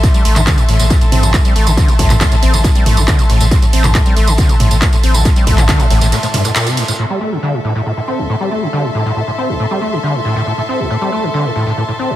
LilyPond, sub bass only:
\new Staff \with { instrumentName = "Sub bass" } { \clef bass \time 4/4 \key a \minor \tempo 4 = 138 r8 a,,16 a,,16 r8 a,,16 a,,16 r8 a,,16 a,,16 r8 a,,16 a,,16 | r8 a,,16 a,,16 r8 a,,16 a,,16 r8 a,,16 a,,16 r8 a,,16 a,,16 | r8 a,,16 a,,16 r8 a,,16 a,,16 r8 a,,16 a,,16 r8 a,,16 a,,16 | r8 a,,16 a,,16 r8 a,,16 a,,16 r2 |
r1 | r1 | r1 | }